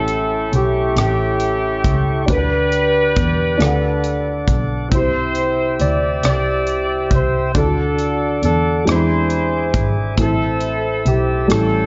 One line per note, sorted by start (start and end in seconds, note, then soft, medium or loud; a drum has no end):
0.00 0.48 A1 medium
0.00 0.92 A2 soft
0.00 2.22 A3 medium
0.00 0.94 C#4 medium
0.00 2.23 C#4 soft
0.00 0.94 E4 medium
0.00 2.24 E4 soft
0.00 2.25 G4 soft
0.00 0.51 A4 medium
0.00 0.57 A4 medium
0.00 2.25 A4 soft
0.00 2.26 C#5 medium
0.00 2.23 E5 soft
0.00 3.56 G5 soft
0.00 2.25 C#6 medium
0.08 closed hi-hat soft
0.53 0.93 B1 medium
0.53 0.98 G4 medium
0.53 0.97 G4 medium
0.53 closed hi-hat soft
0.96 1.80 A1 medium
0.96 2.25 C#4 soft
0.96 2.25 E4 soft
0.96 2.33 G4 medium
0.96 2.25 G4 medium
0.96 cross-stick medium
0.96 closed hi-hat medium
1.40 closed hi-hat soft
1.84 2.25 C#2 medium
1.84 kick medium
1.84 closed hi-hat soft
2.26 3.12 D2 medium
2.26 3.56 D3 soft
2.26 3.56 D4 soft
2.26 3.60 G4 soft
2.26 3.59 B4 soft
2.26 4.44 B4 medium
2.26 4.89 D5 soft
2.26 4.89 D6 medium
2.26 kick medium
2.26 closed hi-hat medium
2.30 4.45 D4 medium
2.30 4.45 G4 medium
2.30 2.35 A#4 soft
2.30 4.48 B4 medium
2.37 3.64 B4 soft
2.72 closed hi-hat soft
3.16 3.57 E2 medium
3.16 kick medium
3.16 closed hi-hat soft
3.57 4.43 D2 medium
3.57 4.87 D3 medium
3.57 4.90 D4 medium
3.57 3.66 F4 soft
3.57 4.90 A4 soft
3.57 4.92 A4 medium
3.57 4.90 F#5 soft
3.57 closed hi-hat medium
3.62 cross-stick medium
3.66 4.95 F#5 medium
4.04 closed hi-hat soft
4.48 4.88 B1 medium
4.48 kick medium
4.48 closed hi-hat soft
4.88 5.75 C2 medium
4.88 6.19 C3 soft
4.88 7.49 C4 soft
4.88 7.51 E4 soft
4.88 7.52 C5 medium
4.88 7.52 E5 soft
4.88 7.52 G5 soft
4.88 7.52 E6 medium
4.88 kick medium
4.88 closed hi-hat medium
4.94 6.21 E4 medium
4.94 6.21 G4 medium
4.94 7.53 G4 medium
4.94 5.83 C5 medium
4.94 5.77 C5 medium
5.35 closed hi-hat soft
5.80 6.20 D2 medium
5.80 6.24 D5 medium
5.80 6.25 D5 medium
5.80 closed hi-hat soft
6.23 7.07 C2 medium
6.23 7.52 G4 medium
6.23 7.08 D5 medium
6.23 7.09 D5 medium
6.23 cross-stick medium
6.23 closed hi-hat medium
6.67 closed hi-hat soft
7.11 7.51 C2 medium
7.11 7.54 C5 medium
7.11 kick medium
7.11 closed hi-hat soft
7.15 7.57 C5 medium
7.54 8.39 D2 medium
7.54 8.83 D3 soft
7.54 8.85 D4 soft
7.54 8.84 D4 medium
7.54 7.62 E4 soft
7.54 8.84 F#4 medium
7.54 8.85 A4 medium
7.54 8.44 A4 medium
7.54 8.43 A4 medium
7.54 8.87 A4 medium
7.54 8.85 D5 soft
7.54 8.85 F#5 soft
7.54 10.15 D6 medium
7.54 kick medium
7.54 closed hi-hat medium
7.63 8.91 F#4 soft
7.98 closed hi-hat soft
8.43 8.83 E2 medium
8.43 8.84 A4 medium
8.43 8.89 A4 medium
8.43 closed hi-hat soft
8.85 9.70 E2 medium
8.85 10.14 E3 soft
8.85 10.17 G#3 medium
8.85 10.15 C4 soft
8.85 10.18 D4 soft
8.85 10.16 E4 soft
8.85 10.15 G#4 medium
8.85 8.94 A4 soft
8.85 11.47 C5 soft
8.85 11.47 E5 soft
8.85 10.17 G#5 soft
8.85 cross-stick medium
8.85 closed hi-hat medium
8.89 9.86 C5 medium
8.89 9.83 C5 medium
8.95 10.22 B5 medium
9.30 closed hi-hat soft
9.74 10.14 G#1 medium
9.74 kick medium
9.74 closed hi-hat soft
10.17 11.01 A1 medium
10.17 11.46 A2 soft
10.17 11.49 C4 soft
10.17 11.47 C4 medium
10.17 11.48 E4 soft
10.17 11.46 E4 medium
10.17 11.50 A4 medium
10.17 11.03 A4 medium
10.17 11.86 A5 soft
10.17 11.86 E6 medium
10.17 kick medium
10.17 closed hi-hat medium
10.21 11.10 A4 medium
10.60 closed hi-hat soft
11.06 11.46 B1 medium
11.06 11.50 G4 medium
11.06 11.52 G4 medium
11.06 closed hi-hat soft
11.48 11.86 A1 medium
11.48 11.86 A2 medium
11.48 11.86 G3 soft
11.48 11.86 A3 soft
11.48 11.86 C#4 soft
11.48 11.86 E4 soft
11.48 11.86 A4 medium
11.48 11.86 C#5 medium
11.48 11.86 G5 soft
11.48 cross-stick medium
11.48 closed hi-hat medium
11.52 11.86 C#4 soft
11.52 11.86 E4 soft
11.52 11.86 A4 medium